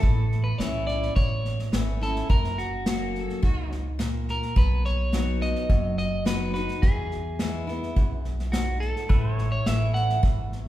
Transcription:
0.00 0.51 A1 medium
0.00 1.10 A2 medium
0.00 0.48 A4 medium
0.00 kick loud
0.00 snare soft
0.32 snare soft
0.44 0.58 B4 medium
0.58 1.08 B1 medium
0.58 0.87 E3 medium
0.58 0.87 A3 medium
0.58 0.87 C#4 medium
0.58 0.87 E4 medium
0.58 0.87 C#5 medium
0.58 snare medium
0.58 hi-hat pedal medium
0.87 1.16 C#4 soft
0.87 1.15 E4 medium
0.87 1.15 D5 loud
0.87 snare soft
1.02 snare soft
1.16 1.65 A1 medium
1.16 2.24 E2 medium
1.16 1.69 C#5 medium
1.16 kick loud
1.16 snare soft
1.45 snare soft
1.59 snare soft
1.72 2.20 G#1 medium
1.72 2.00 E3 medium
1.72 2.00 A3 soft
1.72 2.00 C#4 soft
1.72 2.00 E4 medium
1.72 snare loud
1.72 hi-hat pedal medium
2.01 2.29 C#4 soft
2.01 2.29 E4 medium
2.01 2.30 A4 medium
2.01 snare soft
2.16 snare soft
2.29 3.26 F#1 medium
2.29 3.37 F#2 medium
2.29 2.59 A#4 medium
2.29 kick loud
2.29 snare soft
2.44 snare soft
2.58 3.11 F#4 medium
2.58 snare soft
2.86 3.40 F#3 medium
2.86 3.40 A#3 medium
2.86 3.41 C#4 medium
2.86 3.41 F#4 medium
2.86 snare medium
2.86 hi-hat pedal medium
3.15 3.43 A4 medium
3.15 snare soft
3.29 snare soft
3.42 4.39 C#2 medium
3.42 3.96 G#2 medium
3.42 3.71 F#4 medium
3.42 kick loud
3.42 snare soft
3.72 snare soft
3.99 4.53 A#2 medium
3.99 snare loud
3.99 hi-hat pedal medium
4.28 4.57 A#4 medium
4.28 snare soft
4.42 snare soft
4.56 5.52 B1 medium
4.56 5.64 B2 medium
4.56 4.83 B4 medium
4.56 kick loud
4.56 snare soft
4.85 5.42 C#5 medium
4.85 snare soft
5.12 5.66 F#3 medium
5.12 5.67 B3 medium
5.12 5.67 D#4 medium
5.12 5.67 F#4 medium
5.12 snare medium
5.12 hi-hat pedal medium
5.41 5.97 D#5 medium
5.41 snare soft
5.55 snare soft
5.69 6.66 F#1 medium
5.69 6.77 F#2 medium
5.69 kick loud
5.69 snare soft
5.98 6.27 D#5 medium
5.98 snare soft
6.25 6.53 F#3 medium
6.25 6.53 B3 medium
6.25 6.53 D#4 medium
6.25 6.53 F#4 medium
6.25 6.53 B4 medium
6.25 snare loud
6.25 hi-hat pedal medium
6.54 6.82 D#4 medium
6.54 6.81 F#4 medium
6.54 6.83 B4 medium
6.54 snare soft
6.68 snare soft
6.82 7.90 E2 medium
6.82 7.79 E2 medium
6.82 8.48 G#4 medium
6.82 kick loud
6.82 snare soft
7.11 snare soft
7.39 7.66 E3 medium
7.39 7.67 G#3 medium
7.39 7.67 B3 medium
7.39 7.66 E4 medium
7.39 snare medium
7.39 hi-hat pedal medium
7.67 7.96 B3 soft
7.67 7.95 E4 medium
7.67 snare soft
7.83 snare soft
7.96 8.92 B1 medium
7.96 8.50 F#2 medium
7.96 kick loud
7.96 snare soft
8.25 snare soft
8.39 snare soft
8.52 9.07 G#2 medium
8.52 8.80 F#4 medium
8.52 snare loud
8.52 hi-hat pedal medium
8.80 9.47 A4 medium
8.80 snare soft
8.96 snare soft
9.09 9.58 A1 medium
9.09 10.17 A2 medium
9.09 9.34 B4 medium
9.09 10.68 E5 medium
9.09 kick loud
9.09 snare soft
9.34 10.68 C#5 medium
9.34 snare soft
9.52 9.67 C#5 medium
9.66 10.14 A1 medium
9.66 10.20 E3 medium
9.66 10.20 A3 medium
9.66 10.20 C#4 medium
9.66 10.21 E4 medium
9.66 9.94 E5 medium
9.66 snare medium
9.66 hi-hat pedal medium
9.94 10.21 F#5 medium
9.94 snare soft
10.09 snare soft
10.23 10.68 G#1 medium
10.23 10.68 E2 medium
10.23 kick loud
10.23 snare soft
10.52 snare soft

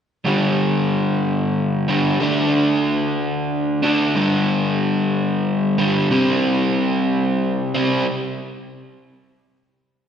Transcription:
0.25 1.86 G2 medium
0.25 1.87 D3 medium
0.25 1.87 G3 medium
1.88 2.20 G2 soft
1.88 2.19 D3 medium
1.88 2.19 G3 medium
2.20 3.82 D3 medium
2.20 3.82 A3 medium
2.20 3.82 D4 medium
3.83 4.15 D3 soft
3.83 4.15 A3 medium
3.83 4.14 D4 medium
4.16 5.77 G2 medium
4.16 5.77 D3 medium
4.16 5.78 G3 medium
5.78 6.10 G2 soft
5.78 6.10 D3 medium
5.78 6.12 G3 medium
6.11 7.72 C3 medium
6.11 7.72 G3 medium
6.11 7.73 C4 medium
7.74 8.06 C3 medium
7.74 8.05 G3 medium
7.74 8.05 C4 medium

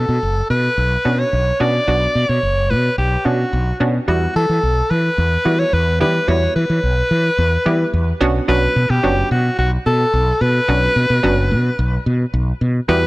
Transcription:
0.00 0.26 B3 medium
0.00 0.26 C#4 medium
0.00 0.26 D4 medium
0.00 0.26 F#4 medium
0.00 0.50 A4 medium
0.09 0.18 B2 loud
0.23 0.41 F#1 medium
0.50 0.68 B2 loud
0.50 1.20 B4 loud
0.78 0.96 B1 loud
1.05 1.23 B2 medium
1.05 1.34 B3 medium
1.05 1.34 C#4 medium
1.05 1.34 D4 medium
1.05 1.34 F#4 medium
1.19 1.61 C#5 loud
1.33 1.51 B1 medium
1.60 1.78 B2 loud
1.60 1.75 B3 medium
1.60 1.75 C#4 medium
1.60 1.75 D4 medium
1.60 1.75 F#4 medium
1.60 2.30 D5 loud
1.88 2.06 B1 loud
1.88 2.46 B3 medium
1.88 2.46 D4 medium
1.88 2.46 F#4 medium
2.15 2.24 B2 loud
2.29 2.38 B2 medium
2.29 2.72 C#5 loud
2.43 2.72 F#1 medium
2.70 2.88 B2 loud
2.70 2.97 B4 loud
2.98 3.16 B1 loud
2.98 3.27 G4 medium
3.25 3.43 B2 loud
3.25 3.54 B3 medium
3.25 3.55 C#4 medium
3.25 3.55 D4 medium
3.25 3.80 F#4 medium
3.25 3.55 F#4 medium
3.53 3.71 B1 loud
3.80 3.98 B2 medium
3.80 3.95 B3 medium
3.80 3.95 C#4 medium
3.80 3.95 D4 medium
3.80 3.95 F#4 medium
4.08 4.26 E2 loud
4.08 4.66 G3 medium
4.08 4.66 B3 medium
4.08 4.66 E4 medium
4.08 4.66 F#4 medium
4.08 4.34 F#4 medium
4.36 4.45 E3 medium
4.36 4.92 A4 loud
4.49 4.58 E3 medium
4.63 4.81 B1 medium
4.91 5.09 E3 loud
4.91 5.61 B4 loud
5.18 5.36 E2 loud
5.45 5.63 E3 loud
5.45 5.74 G3 medium
5.45 5.75 B3 medium
5.45 5.75 E4 medium
5.45 5.75 F#4 medium
5.59 5.75 C#5 loud
5.73 6.02 E2 medium
5.73 6.00 B4 loud
6.00 6.18 E3 medium
6.00 6.15 G3 medium
6.00 6.15 B3 medium
6.00 6.15 E4 medium
6.00 6.15 G4 medium
6.00 6.30 B4 loud
6.28 6.46 E2 loud
6.28 6.86 G3 medium
6.28 6.86 B3 medium
6.28 6.87 E4 medium
6.28 6.87 F#4 medium
6.28 6.55 C#5 loud
6.56 6.65 E3 medium
6.56 8.17 B4 loud
6.70 6.79 E3 loud
6.83 7.01 B1 medium
7.11 7.29 E3 medium
7.38 7.56 E2 loud
7.66 7.84 E3 loud
7.66 7.95 G3 medium
7.66 7.95 B3 medium
7.66 7.95 E4 medium
7.66 7.95 G4 medium
7.94 8.11 E2 loud
8.21 8.39 B1 loud
8.21 8.43 B3 loud
8.21 8.43 C#4 medium
8.21 8.43 D4 medium
8.21 8.43 F#4 loud
8.48 8.66 B1 loud
8.48 8.77 F#3 medium
8.48 8.77 B3 medium
8.48 8.78 C#4 medium
8.48 8.78 D4 medium
8.48 8.78 F#4 medium
8.48 8.91 B4 loud
8.76 8.85 B2 loud
8.90 8.99 B2 loud
8.90 9.31 G4 loud
9.03 9.22 F#1 medium
9.03 9.62 F#3 medium
9.03 9.62 B3 medium
9.03 9.62 C#4 medium
9.03 9.62 D4 medium
9.03 9.62 F#4 medium
9.31 9.49 B2 loud
9.31 9.57 F#4 medium
9.59 9.76 B1 loud
9.59 9.71 F#4 medium
9.86 10.04 B2 loud
9.86 10.43 A4 loud
10.13 10.31 B1 loud
10.41 10.59 B2 loud
10.41 12.06 B4 loud
10.68 10.86 B1 loud
10.68 10.97 F#3 medium
10.68 10.98 B3 medium
10.68 10.98 C#4 medium
10.68 10.98 D4 medium
10.68 10.98 F#4 medium
10.96 11.05 B2 loud
11.10 11.19 B2 loud
11.23 11.53 F#1 loud
11.23 11.82 F#3 medium
11.23 11.82 B3 medium
11.23 11.82 C#4 medium
11.23 11.82 D4 medium
11.23 11.82 F#4 loud
11.51 11.69 B2 loud
11.79 11.97 B1 loud
12.06 12.24 B2 loud
12.34 12.52 B1 loud
12.61 12.79 B2 medium
12.88 13.07 E2 loud
12.88 13.07 G3 medium
12.88 13.07 B3 medium
12.88 13.07 E4 medium
12.88 13.07 F#4 medium
12.88 13.07 G4 medium
12.88 13.07 B4 loud

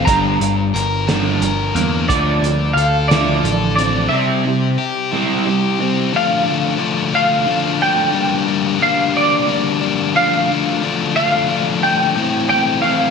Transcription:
0.00 1.07 D4 medium
0.05 0.38 G1 medium
0.05 0.38 G2 medium
0.05 1.76 G2 medium
0.05 0.38 D3 medium
0.05 0.39 G3 medium
0.05 1.37 A#5 medium
0.05 kick loud
0.05 closed hi-hat medium
0.40 0.71 G1 medium
0.40 0.71 G2 medium
0.40 0.71 D3 medium
0.40 closed hi-hat medium
0.74 1.38 G1 medium
0.74 1.40 A#4 medium
0.74 closed hi-hat medium
1.07 1.40 G2 medium
1.07 1.40 D3 medium
1.07 1.41 G3 medium
1.07 2.09 D4 medium
1.07 snare medium
1.07 closed hi-hat medium
1.41 1.72 G1 medium
1.41 1.72 G2 medium
1.41 1.72 D3 medium
1.41 2.09 A#4 medium
1.41 closed hi-hat medium
1.75 2.09 E2 medium
1.75 2.06 G2 medium
1.75 2.06 D3 medium
1.75 2.09 A#3 medium
1.75 closed hi-hat medium
2.08 2.40 D2 medium
2.08 3.78 D3 medium
2.08 2.41 D3 medium
2.08 2.41 F3 medium
2.08 2.42 A3 medium
2.08 2.73 D5 medium
2.08 kick loud
2.08 closed hi-hat medium
2.42 2.73 D2 medium
2.42 2.74 D3 medium
2.42 2.74 F3 medium
2.42 closed hi-hat medium
2.73 3.40 D2 medium
2.73 3.43 A4 medium
2.73 3.08 F5 medium
2.78 closed hi-hat medium
3.08 3.42 D3 medium
3.08 3.43 F3 loud
3.08 4.12 D4 medium
3.08 3.74 D5 medium
3.08 snare loud
3.08 closed hi-hat medium
3.12 3.43 A3 medium
3.44 4.08 A1 medium
3.44 3.75 D3 medium
3.44 3.75 F3 medium
3.44 4.12 A4 medium
3.44 closed hi-hat medium
3.76 4.08 D3 medium
3.76 4.08 F3 medium
3.76 5.80 C4 medium
3.76 4.08 D5 medium
3.76 closed hi-hat medium
4.09 4.42 C3 medium
4.09 5.79 C3 medium
4.09 4.43 G3 medium
4.09 4.43 C4 medium
4.09 5.41 E5 medium
4.45 4.76 C3 medium
4.45 4.76 G3 medium
4.78 5.45 G4 medium
5.11 5.44 C3 medium
5.11 5.44 G3 medium
5.11 5.45 C4 medium
5.11 6.13 E4 medium
5.46 5.77 C3 medium
5.46 5.77 G3 medium
5.46 6.14 G4 medium
5.79 6.10 C3 medium
5.79 6.10 G3 medium
5.79 6.14 C4 medium
6.13 6.77 D3 medium
6.13 6.48 F3 medium
6.13 6.46 A3 loud
6.13 6.45 D4 medium
6.13 7.14 F5 loud
6.46 6.79 F3 medium
6.46 6.80 A3 medium
6.46 6.81 D4 medium
6.78 7.45 D3 medium
6.78 7.15 F3 medium
6.78 7.13 A3 loud
6.78 7.12 D4 loud
7.12 7.47 F3 medium
7.12 7.46 A3 medium
7.12 7.48 D4 medium
7.12 7.82 F5 loud
7.46 8.11 D3 medium
7.46 7.81 F3 medium
7.46 7.79 A3 medium
7.46 7.79 D4 medium
7.79 8.13 F3 medium
7.79 8.13 A3 medium
7.79 8.14 D4 medium
7.79 8.82 G5 loud
8.12 8.81 G2 medium
8.12 8.78 D3 medium
8.12 8.48 G3 loud
8.12 8.46 A#3 loud
8.12 8.46 D4 loud
8.47 8.79 G3 medium
8.47 8.80 A#3 medium
8.47 8.82 D4 medium
8.79 9.46 D3 medium
8.79 9.14 G3 medium
8.79 9.13 A#3 loud
8.79 9.12 D4 loud
8.79 9.17 F5 loud
9.13 9.47 G3 medium
9.13 9.48 A#3 medium
9.13 9.49 D4 medium
9.13 9.87 D5 loud
9.47 10.13 D3 medium
9.47 9.82 G3 medium
9.47 9.81 A#3 medium
9.47 9.80 D4 medium
9.81 10.14 G3 medium
9.81 10.14 A#3 medium
9.81 10.13 D4 medium
10.15 10.81 D3 loud
10.15 10.50 F3 loud
10.15 10.50 A3 medium
10.15 10.48 D4 loud
10.15 11.15 F5 loud
10.49 10.82 F3 medium
10.49 10.83 A3 medium
10.49 10.83 D4 medium
10.82 11.47 D3 medium
10.82 11.16 F3 medium
10.82 11.16 A3 loud
10.82 11.14 D4 loud
11.15 11.48 F3 medium
11.15 11.49 A3 medium
11.15 11.49 D4 medium
11.15 11.83 F5 loud
11.48 12.14 D3 medium
11.48 11.84 F3 medium
11.48 11.83 A3 medium
11.48 11.81 D4 medium
11.82 12.15 F3 medium
11.82 12.17 A3 medium
11.82 12.14 D4 medium
11.82 12.48 G5 loud
12.15 12.82 A2 medium
12.15 12.81 E3 medium
12.15 12.51 A3 medium
12.15 12.50 C4 loud
12.15 12.48 E4 loud
12.49 12.83 A3 medium
12.49 12.84 C4 medium
12.49 12.84 E4 medium
12.49 12.81 G5 loud
12.82 13.10 E3 medium
12.82 13.10 A3 medium
12.82 13.10 C4 medium
12.82 13.10 E4 loud
12.82 13.10 F5 medium

